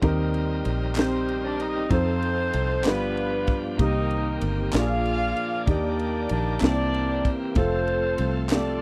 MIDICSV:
0, 0, Header, 1, 6, 480
1, 0, Start_track
1, 0, Tempo, 628272
1, 18, Time_signature, 6, 3, 24, 8
1, 6735, End_track
2, 0, Start_track
2, 0, Title_t, "Horn section"
2, 0, Program_c, 0, 61
2, 745, Note_on_c, 0, 67, 66
2, 749, Note_on_c, 0, 60, 90
2, 749, Note_on_c, 0, 72, 98
2, 1079, Note_off_c, 0, 60, 0
2, 1079, Note_off_c, 0, 72, 0
2, 1104, Note_on_c, 0, 62, 89
2, 1104, Note_on_c, 0, 74, 97
2, 1221, Note_off_c, 0, 62, 0
2, 1221, Note_off_c, 0, 74, 0
2, 1225, Note_on_c, 0, 63, 83
2, 1225, Note_on_c, 0, 75, 90
2, 1431, Note_off_c, 0, 67, 0
2, 1462, Note_off_c, 0, 63, 0
2, 1462, Note_off_c, 0, 75, 0
2, 1462, Note_on_c, 0, 60, 94
2, 1462, Note_on_c, 0, 72, 102
2, 1463, Note_on_c, 0, 69, 74
2, 1464, Note_on_c, 0, 63, 75
2, 2150, Note_off_c, 0, 63, 0
2, 2150, Note_off_c, 0, 69, 0
2, 2180, Note_off_c, 0, 60, 0
2, 2180, Note_off_c, 0, 72, 0
2, 2181, Note_on_c, 0, 65, 64
2, 2182, Note_on_c, 0, 59, 87
2, 2182, Note_on_c, 0, 71, 94
2, 2186, Note_on_c, 0, 62, 62
2, 2720, Note_off_c, 0, 59, 0
2, 2720, Note_off_c, 0, 71, 0
2, 2869, Note_off_c, 0, 65, 0
2, 2871, Note_off_c, 0, 62, 0
2, 2901, Note_on_c, 0, 63, 79
2, 2901, Note_on_c, 0, 75, 86
2, 2903, Note_on_c, 0, 70, 68
2, 2905, Note_on_c, 0, 67, 63
2, 3348, Note_off_c, 0, 63, 0
2, 3348, Note_off_c, 0, 75, 0
2, 3589, Note_off_c, 0, 70, 0
2, 3590, Note_off_c, 0, 67, 0
2, 3617, Note_on_c, 0, 65, 108
2, 3617, Note_on_c, 0, 77, 117
2, 3623, Note_on_c, 0, 68, 75
2, 3623, Note_on_c, 0, 74, 80
2, 4306, Note_off_c, 0, 65, 0
2, 4306, Note_off_c, 0, 77, 0
2, 4309, Note_off_c, 0, 68, 0
2, 4309, Note_off_c, 0, 74, 0
2, 4351, Note_on_c, 0, 62, 92
2, 4351, Note_on_c, 0, 74, 100
2, 4352, Note_on_c, 0, 70, 73
2, 4353, Note_on_c, 0, 67, 71
2, 4818, Note_off_c, 0, 62, 0
2, 4818, Note_off_c, 0, 74, 0
2, 4827, Note_on_c, 0, 62, 88
2, 4827, Note_on_c, 0, 74, 96
2, 5033, Note_off_c, 0, 70, 0
2, 5034, Note_off_c, 0, 67, 0
2, 5045, Note_off_c, 0, 62, 0
2, 5045, Note_off_c, 0, 74, 0
2, 5073, Note_on_c, 0, 62, 97
2, 5073, Note_on_c, 0, 74, 106
2, 5075, Note_on_c, 0, 67, 71
2, 5075, Note_on_c, 0, 70, 75
2, 5574, Note_off_c, 0, 62, 0
2, 5574, Note_off_c, 0, 74, 0
2, 5755, Note_off_c, 0, 67, 0
2, 5755, Note_off_c, 0, 70, 0
2, 5792, Note_on_c, 0, 60, 82
2, 5792, Note_on_c, 0, 72, 89
2, 5796, Note_on_c, 0, 65, 73
2, 5799, Note_on_c, 0, 69, 66
2, 6375, Note_off_c, 0, 60, 0
2, 6375, Note_off_c, 0, 65, 0
2, 6375, Note_off_c, 0, 69, 0
2, 6375, Note_off_c, 0, 72, 0
2, 6505, Note_on_c, 0, 69, 73
2, 6507, Note_on_c, 0, 62, 81
2, 6507, Note_on_c, 0, 74, 88
2, 6509, Note_on_c, 0, 65, 76
2, 6735, Note_off_c, 0, 62, 0
2, 6735, Note_off_c, 0, 65, 0
2, 6735, Note_off_c, 0, 69, 0
2, 6735, Note_off_c, 0, 74, 0
2, 6735, End_track
3, 0, Start_track
3, 0, Title_t, "Grand piano"
3, 0, Program_c, 1, 0
3, 0, Control_c, 1, 64, 127
3, 12, Note_on_c, 1, 60, 79
3, 19, Note_on_c, 1, 63, 78
3, 23, Note_on_c, 1, 51, 69
3, 23, Note_on_c, 1, 67, 83
3, 29, Control_c, 1, 64, 0
3, 31, Note_on_c, 1, 70, 95
3, 170, Control_c, 1, 64, 127
3, 597, Note_off_c, 1, 60, 0
3, 601, Note_off_c, 1, 63, 0
3, 602, Note_off_c, 1, 67, 0
3, 606, Note_off_c, 1, 70, 0
3, 710, Note_off_c, 1, 51, 0
3, 731, Note_on_c, 1, 60, 66
3, 736, Note_on_c, 1, 63, 57
3, 743, Note_on_c, 1, 67, 62
3, 753, Note_on_c, 1, 72, 68
3, 1316, Note_off_c, 1, 60, 0
3, 1319, Note_off_c, 1, 63, 0
3, 1323, Note_off_c, 1, 67, 0
3, 1327, Note_off_c, 1, 72, 0
3, 1448, Note_on_c, 1, 60, 65
3, 1455, Note_on_c, 1, 63, 58
3, 1461, Note_on_c, 1, 65, 57
3, 1468, Note_on_c, 1, 69, 78
3, 1469, Control_c, 1, 64, 0
3, 1596, Control_c, 1, 64, 127
3, 2035, Note_off_c, 1, 60, 0
3, 2038, Note_off_c, 1, 63, 0
3, 2041, Note_off_c, 1, 65, 0
3, 2045, Note_off_c, 1, 69, 0
3, 2172, Note_on_c, 1, 59, 59
3, 2178, Note_on_c, 1, 62, 57
3, 2181, Note_on_c, 1, 43, 53
3, 2185, Note_on_c, 1, 65, 57
3, 2187, Note_on_c, 1, 67, 69
3, 2189, Control_c, 1, 64, 0
3, 2319, Control_c, 1, 64, 127
3, 2756, Note_off_c, 1, 59, 0
3, 2760, Note_off_c, 1, 62, 0
3, 2763, Note_off_c, 1, 65, 0
3, 2764, Note_off_c, 1, 67, 0
3, 2869, Note_off_c, 1, 43, 0
3, 2886, Note_on_c, 1, 58, 66
3, 2895, Note_on_c, 1, 48, 55
3, 2895, Note_on_c, 1, 60, 57
3, 2897, Note_on_c, 1, 63, 64
3, 2905, Note_on_c, 1, 67, 76
3, 2909, Control_c, 1, 64, 0
3, 3051, Control_c, 1, 64, 127
3, 3473, Note_off_c, 1, 58, 0
3, 3478, Note_off_c, 1, 60, 0
3, 3479, Note_off_c, 1, 63, 0
3, 3483, Note_off_c, 1, 67, 0
3, 3585, Note_off_c, 1, 48, 0
3, 3611, Note_on_c, 1, 58, 58
3, 3614, Note_on_c, 1, 62, 57
3, 3619, Note_on_c, 1, 65, 58
3, 3620, Note_on_c, 1, 46, 59
3, 3627, Control_c, 1, 64, 0
3, 3631, Note_on_c, 1, 67, 54
3, 3673, Note_off_c, 1, 67, 0
3, 3675, Note_on_c, 1, 68, 67
3, 3774, Control_c, 1, 64, 127
3, 4195, Note_off_c, 1, 58, 0
3, 4197, Note_off_c, 1, 62, 0
3, 4199, Note_off_c, 1, 65, 0
3, 4227, Note_off_c, 1, 68, 0
3, 4307, Note_off_c, 1, 46, 0
3, 4326, Note_on_c, 1, 58, 71
3, 4333, Note_on_c, 1, 62, 63
3, 4339, Note_on_c, 1, 51, 56
3, 4339, Note_on_c, 1, 63, 66
3, 4348, Control_c, 1, 64, 0
3, 4348, Note_on_c, 1, 67, 75
3, 4462, Control_c, 1, 64, 127
3, 4912, Note_off_c, 1, 58, 0
3, 4916, Note_off_c, 1, 62, 0
3, 4919, Note_off_c, 1, 63, 0
3, 4924, Note_off_c, 1, 67, 0
3, 5026, Note_off_c, 1, 51, 0
3, 5043, Note_on_c, 1, 58, 69
3, 5046, Note_on_c, 1, 60, 56
3, 5053, Note_on_c, 1, 48, 60
3, 5056, Note_on_c, 1, 63, 48
3, 5062, Note_on_c, 1, 67, 67
3, 5066, Control_c, 1, 64, 0
3, 5105, Note_off_c, 1, 63, 0
3, 5106, Note_on_c, 1, 64, 56
3, 5189, Control_c, 1, 64, 127
3, 5631, Note_off_c, 1, 58, 0
3, 5632, Note_off_c, 1, 60, 0
3, 5640, Note_off_c, 1, 67, 0
3, 5662, Note_off_c, 1, 64, 0
3, 5744, Note_off_c, 1, 48, 0
3, 5770, Note_on_c, 1, 57, 68
3, 5776, Note_on_c, 1, 60, 61
3, 5782, Note_on_c, 1, 65, 68
3, 5786, Control_c, 1, 64, 0
3, 5787, Note_on_c, 1, 69, 74
3, 5900, Control_c, 1, 64, 127
3, 6355, Note_off_c, 1, 57, 0
3, 6357, Note_off_c, 1, 60, 0
3, 6361, Note_off_c, 1, 65, 0
3, 6363, Note_off_c, 1, 69, 0
3, 6493, Note_on_c, 1, 55, 56
3, 6502, Note_on_c, 1, 60, 55
3, 6508, Note_on_c, 1, 65, 58
3, 6513, Note_on_c, 1, 67, 73
3, 6543, Note_off_c, 1, 55, 0
3, 6544, Note_on_c, 1, 57, 73
3, 6735, Note_off_c, 1, 57, 0
3, 6735, Note_off_c, 1, 60, 0
3, 6735, Note_off_c, 1, 65, 0
3, 6735, Note_off_c, 1, 67, 0
3, 6735, End_track
4, 0, Start_track
4, 0, Title_t, "Tonewheel organ"
4, 0, Program_c, 2, 16
4, 11, Note_on_c, 2, 63, 72
4, 12, Note_on_c, 2, 60, 81
4, 13, Note_on_c, 2, 70, 94
4, 18, Note_on_c, 2, 55, 88
4, 1426, Note_off_c, 2, 63, 0
4, 1427, Note_off_c, 2, 60, 0
4, 1427, Note_off_c, 2, 70, 0
4, 1429, Note_off_c, 2, 55, 0
4, 1442, Note_on_c, 2, 53, 61
4, 1448, Note_on_c, 2, 60, 62
4, 1448, Note_on_c, 2, 63, 64
4, 1448, Note_on_c, 2, 69, 75
4, 2160, Note_off_c, 2, 53, 0
4, 2165, Note_on_c, 2, 62, 50
4, 2166, Note_on_c, 2, 59, 56
4, 2166, Note_on_c, 2, 67, 63
4, 2169, Note_on_c, 2, 53, 65
4, 2173, Note_off_c, 2, 60, 0
4, 2173, Note_off_c, 2, 63, 0
4, 2173, Note_off_c, 2, 69, 0
4, 2877, Note_off_c, 2, 67, 0
4, 2884, Note_on_c, 2, 60, 60
4, 2887, Note_on_c, 2, 67, 77
4, 2890, Note_on_c, 2, 51, 66
4, 2891, Note_off_c, 2, 62, 0
4, 2892, Note_off_c, 2, 59, 0
4, 2893, Note_off_c, 2, 53, 0
4, 2893, Note_on_c, 2, 58, 58
4, 3595, Note_off_c, 2, 67, 0
4, 3599, Note_off_c, 2, 58, 0
4, 3604, Note_on_c, 2, 67, 54
4, 3607, Note_on_c, 2, 62, 56
4, 3609, Note_on_c, 2, 53, 65
4, 3609, Note_on_c, 2, 58, 62
4, 3610, Note_off_c, 2, 60, 0
4, 3613, Note_off_c, 2, 51, 0
4, 3658, Note_on_c, 2, 68, 65
4, 3660, Note_off_c, 2, 67, 0
4, 4317, Note_off_c, 2, 58, 0
4, 4322, Note_on_c, 2, 74, 59
4, 4326, Note_on_c, 2, 51, 68
4, 4326, Note_on_c, 2, 58, 62
4, 4327, Note_on_c, 2, 67, 73
4, 4331, Note_off_c, 2, 62, 0
4, 4333, Note_off_c, 2, 53, 0
4, 4357, Note_off_c, 2, 68, 0
4, 5049, Note_off_c, 2, 74, 0
4, 5051, Note_off_c, 2, 51, 0
4, 5051, Note_off_c, 2, 58, 0
4, 5051, Note_off_c, 2, 67, 0
4, 5054, Note_on_c, 2, 52, 66
4, 5055, Note_on_c, 2, 66, 52
4, 5060, Note_on_c, 2, 60, 62
4, 5061, Note_on_c, 2, 58, 62
4, 5105, Note_off_c, 2, 66, 0
4, 5113, Note_on_c, 2, 67, 68
4, 5767, Note_off_c, 2, 60, 0
4, 5775, Note_off_c, 2, 52, 0
4, 5775, Note_on_c, 2, 53, 73
4, 5776, Note_on_c, 2, 60, 65
4, 5778, Note_off_c, 2, 58, 0
4, 5780, Note_on_c, 2, 57, 64
4, 5780, Note_on_c, 2, 69, 78
4, 5804, Note_off_c, 2, 67, 0
4, 6735, Note_off_c, 2, 53, 0
4, 6735, Note_off_c, 2, 57, 0
4, 6735, Note_off_c, 2, 60, 0
4, 6735, Note_off_c, 2, 69, 0
4, 6735, End_track
5, 0, Start_track
5, 0, Title_t, "Fingered electric bass"
5, 0, Program_c, 3, 33
5, 21, Note_on_c, 3, 39, 95
5, 469, Note_off_c, 3, 39, 0
5, 502, Note_on_c, 3, 34, 77
5, 1430, Note_off_c, 3, 34, 0
5, 1461, Note_on_c, 3, 41, 97
5, 1909, Note_off_c, 3, 41, 0
5, 1942, Note_on_c, 3, 36, 80
5, 2180, Note_off_c, 3, 36, 0
5, 2180, Note_on_c, 3, 31, 106
5, 2628, Note_off_c, 3, 31, 0
5, 2899, Note_on_c, 3, 36, 102
5, 3347, Note_off_c, 3, 36, 0
5, 3377, Note_on_c, 3, 31, 78
5, 3598, Note_off_c, 3, 31, 0
5, 3621, Note_on_c, 3, 34, 101
5, 4068, Note_off_c, 3, 34, 0
5, 4335, Note_on_c, 3, 39, 98
5, 4785, Note_off_c, 3, 39, 0
5, 4821, Note_on_c, 3, 34, 86
5, 5039, Note_off_c, 3, 34, 0
5, 5059, Note_on_c, 3, 36, 106
5, 5507, Note_off_c, 3, 36, 0
5, 5776, Note_on_c, 3, 29, 102
5, 6225, Note_off_c, 3, 29, 0
5, 6259, Note_on_c, 3, 36, 81
5, 6735, Note_off_c, 3, 36, 0
5, 6735, End_track
6, 0, Start_track
6, 0, Title_t, "Drums"
6, 19, Note_on_c, 9, 36, 100
6, 20, Note_on_c, 9, 51, 58
6, 95, Note_off_c, 9, 36, 0
6, 96, Note_off_c, 9, 51, 0
6, 260, Note_on_c, 9, 51, 46
6, 336, Note_off_c, 9, 51, 0
6, 496, Note_on_c, 9, 51, 58
6, 573, Note_off_c, 9, 51, 0
6, 727, Note_on_c, 9, 39, 91
6, 739, Note_on_c, 9, 51, 72
6, 757, Note_on_c, 9, 38, 88
6, 804, Note_off_c, 9, 39, 0
6, 815, Note_off_c, 9, 51, 0
6, 833, Note_off_c, 9, 38, 0
6, 982, Note_on_c, 9, 51, 41
6, 1058, Note_off_c, 9, 51, 0
6, 1220, Note_on_c, 9, 51, 47
6, 1297, Note_off_c, 9, 51, 0
6, 1456, Note_on_c, 9, 36, 106
6, 1457, Note_on_c, 9, 51, 64
6, 1533, Note_off_c, 9, 36, 0
6, 1534, Note_off_c, 9, 51, 0
6, 1699, Note_on_c, 9, 51, 44
6, 1776, Note_off_c, 9, 51, 0
6, 1936, Note_on_c, 9, 51, 64
6, 2012, Note_off_c, 9, 51, 0
6, 2172, Note_on_c, 9, 39, 87
6, 2179, Note_on_c, 9, 51, 67
6, 2196, Note_on_c, 9, 38, 102
6, 2248, Note_off_c, 9, 39, 0
6, 2255, Note_off_c, 9, 51, 0
6, 2272, Note_off_c, 9, 38, 0
6, 2423, Note_on_c, 9, 51, 40
6, 2500, Note_off_c, 9, 51, 0
6, 2652, Note_on_c, 9, 51, 49
6, 2658, Note_on_c, 9, 36, 87
6, 2729, Note_off_c, 9, 51, 0
6, 2734, Note_off_c, 9, 36, 0
6, 2897, Note_on_c, 9, 51, 66
6, 2898, Note_on_c, 9, 36, 113
6, 2973, Note_off_c, 9, 51, 0
6, 2974, Note_off_c, 9, 36, 0
6, 3137, Note_on_c, 9, 51, 43
6, 3213, Note_off_c, 9, 51, 0
6, 3372, Note_on_c, 9, 51, 64
6, 3448, Note_off_c, 9, 51, 0
6, 3612, Note_on_c, 9, 39, 78
6, 3612, Note_on_c, 9, 51, 76
6, 3629, Note_on_c, 9, 38, 102
6, 3688, Note_off_c, 9, 39, 0
6, 3688, Note_off_c, 9, 51, 0
6, 3706, Note_off_c, 9, 38, 0
6, 3861, Note_on_c, 9, 51, 42
6, 3938, Note_off_c, 9, 51, 0
6, 4098, Note_on_c, 9, 51, 49
6, 4174, Note_off_c, 9, 51, 0
6, 4335, Note_on_c, 9, 51, 68
6, 4336, Note_on_c, 9, 36, 109
6, 4411, Note_off_c, 9, 51, 0
6, 4412, Note_off_c, 9, 36, 0
6, 4580, Note_on_c, 9, 51, 47
6, 4656, Note_off_c, 9, 51, 0
6, 4807, Note_on_c, 9, 51, 62
6, 4884, Note_off_c, 9, 51, 0
6, 5046, Note_on_c, 9, 39, 84
6, 5057, Note_on_c, 9, 51, 64
6, 5074, Note_on_c, 9, 38, 106
6, 5123, Note_off_c, 9, 39, 0
6, 5133, Note_off_c, 9, 51, 0
6, 5150, Note_off_c, 9, 38, 0
6, 5304, Note_on_c, 9, 51, 45
6, 5381, Note_off_c, 9, 51, 0
6, 5539, Note_on_c, 9, 36, 91
6, 5540, Note_on_c, 9, 51, 53
6, 5615, Note_off_c, 9, 36, 0
6, 5616, Note_off_c, 9, 51, 0
6, 5770, Note_on_c, 9, 51, 63
6, 5776, Note_on_c, 9, 36, 106
6, 5846, Note_off_c, 9, 51, 0
6, 5852, Note_off_c, 9, 36, 0
6, 6016, Note_on_c, 9, 51, 40
6, 6093, Note_off_c, 9, 51, 0
6, 6249, Note_on_c, 9, 51, 63
6, 6326, Note_off_c, 9, 51, 0
6, 6488, Note_on_c, 9, 39, 90
6, 6494, Note_on_c, 9, 51, 77
6, 6511, Note_on_c, 9, 38, 99
6, 6565, Note_off_c, 9, 39, 0
6, 6570, Note_off_c, 9, 51, 0
6, 6588, Note_off_c, 9, 38, 0
6, 6735, End_track
0, 0, End_of_file